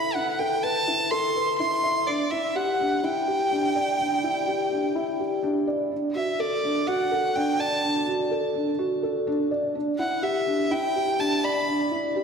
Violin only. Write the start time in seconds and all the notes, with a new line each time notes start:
Already playing: B5
0.14 F#5
0.39 G5
0.63 A5
1.10 C6
1.58 C6
2.07 D5
2.31 E5
2.56 F#5
3.03 G5
6.15 E5
6.39 D5
6.87 F#5
7.36 G5
7.60 A5
9.99 F#5
10.23 E5
10.72 G5
11.20 A5
11.44 B5